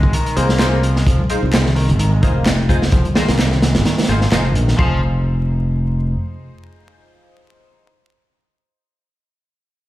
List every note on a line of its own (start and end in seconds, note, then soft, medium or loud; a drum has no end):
0.03 0.11 G#1 loud
0.03 0.13 G#3 medium
0.03 kick medium
0.03 low conga medium
0.13 0.36 D#3 medium
0.13 closed hi-hat medium
0.26 closed hi-hat soft
0.36 1.02 C2 medium
0.36 0.82 A#3 medium
0.36 0.57 D#4 medium
0.36 0.57 F4 medium
0.36 0.57 G#4 medium
0.36 0.57 C5 medium
0.36 closed hi-hat medium
0.49 snare soft
0.59 0.75 D#4 medium
0.59 0.75 F4 medium
0.59 0.75 G#4 medium
0.59 0.75 C5 loud
0.59 snare loud
0.59 clap medium
0.59 closed hi-hat medium
0.83 0.95 F3 medium
0.83 closed hi-hat medium
0.96 1.06 G#3 medium
0.96 snare soft
1.06 1.16 F1 loud
1.06 1.19 F3 medium
1.06 kick loud
1.06 closed hi-hat medium
1.19 high conga medium
1.30 2.20 D#4 medium
1.30 2.20 F4 medium
1.30 2.20 G#4 medium
1.30 2.20 C5 medium
1.30 closed hi-hat medium
1.43 1.91 C2 medium
1.53 1.60 G#3 medium
1.53 snare loud
1.53 clap medium
1.53 closed hi-hat medium
1.66 snare soft
1.66 low conga medium
1.76 1.88 D#3 loud
1.76 open hi-hat medium
1.89 2.23 G#1 medium
1.89 closed hi-hat soft
1.89 low conga medium
1.99 2.11 D#3 medium
1.99 closed hi-hat medium
2.12 2.22 G#3 medium
2.23 2.88 F1 medium
2.23 2.45 A#3 medium
2.23 2.67 D#4 medium
2.23 2.67 F4 medium
2.23 2.67 G#4 medium
2.23 2.67 C5 medium
2.23 kick medium
2.23 closed hi-hat medium
2.46 2.53 G#3 medium
2.46 snare loud
2.46 clap medium
2.46 closed hi-hat medium
2.69 2.84 D#4 medium
2.69 2.84 F4 medium
2.69 2.84 G#4 medium
2.69 2.84 C5 medium
2.69 kick medium
2.69 closed hi-hat medium
2.82 snare medium
2.92 3.02 F1 medium
2.92 3.05 F3 medium
2.92 kick loud
2.92 closed hi-hat medium
3.05 closed hi-hat soft
3.05 high conga medium
3.15 3.51 A#3 medium
3.15 3.31 D#4 medium
3.15 3.31 F4 medium
3.15 3.31 G#4 medium
3.15 3.31 C5 loud
3.15 snare medium
3.15 closed hi-hat medium
3.15 low conga medium
3.28 3.77 C2 medium
3.28 snare medium
3.28 closed hi-hat medium
3.39 snare loud
3.39 clap medium
3.39 closed hi-hat medium
3.52 3.61 C4 medium
3.52 snare soft
3.52 low conga medium
3.62 3.74 G#3 medium
3.62 snare medium
3.62 closed hi-hat medium
3.75 3.83 G#1 medium
3.75 3.84 G#3 medium
3.75 snare loud
3.75 closed hi-hat medium
3.75 low conga medium
3.85 3.97 D#3 medium
3.85 snare loud
3.85 closed hi-hat medium
3.98 snare medium
3.98 closed hi-hat medium
4.03 snare medium
4.03 closed hi-hat medium
4.08 4.26 G#1 medium
4.08 4.20 A#3 medium
4.08 4.29 D#4 medium
4.08 4.29 F4 medium
4.08 4.29 G#4 medium
4.08 4.29 C5 medium
4.08 closed hi-hat medium
4.21 snare soft
4.32 4.55 F1 medium
4.32 4.44 F3 medium
4.32 4.47 D#4 medium
4.32 4.47 F4 medium
4.32 4.47 G#4 medium
4.32 4.47 C5 medium
4.32 snare loud
4.32 clap medium
4.32 closed hi-hat medium
4.45 4.54 F3 medium
4.55 4.73 A#1 medium
4.55 4.67 D#3 medium
4.55 closed hi-hat medium
4.68 4.77 D#3 medium
4.68 snare soft
4.78 6.14 F1 loud
4.78 5.00 F3 medium
4.78 7.88 D#4 medium
4.78 7.88 F4 medium
4.78 7.88 G#4 medium
4.78 7.88 C5 medium
4.78 kick loud